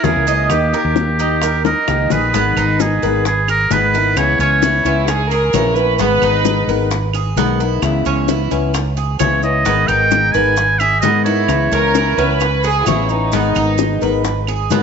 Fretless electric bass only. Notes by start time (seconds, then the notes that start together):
0.04 E2
0.15 C#2
0.50 D#2
0.85 D#2
1.88 C#2
2.11 A#1
2.34 G#1
2.56 G#1
3.03 G#1
3.71 G#1
4.16 C#2
4.39 C#2
4.85 C#2
5.53 A#1
5.99 G#1
6.22 G#1
6.67 G#1
7.36 B1
7.82 C#2
8.06 C#2
8.51 C#2
9.20 C#2
9.66 G#1
9.88 G#1
10.34 G#1
11.03 G#2
11.48 C#2
11.72 C#2
12.18 C#2
12.86 A1
13.33 G#1
13.56 G#1
14.02 G#1
14.70 G#2